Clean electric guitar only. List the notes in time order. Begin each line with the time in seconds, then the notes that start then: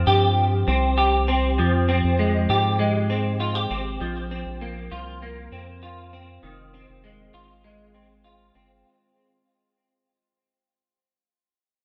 Already playing: F3 C4
0.07 G4
0.68 C4
0.98 G4
1.28 C4
1.59 F3
1.89 C4
2.19 G#3
2.50 G4
2.79 G#3
3.10 C4
3.40 F4
3.55 G4
3.71 C4
4.01 F3
4.31 C4
4.61 A#3
4.92 F4
5.22 A#3
5.52 C4
5.83 F4
6.13 C4
6.43 D#3
6.74 C4
7.04 G#3
7.34 F4
7.64 G#3
7.94 C4
8.24 F4
8.55 C4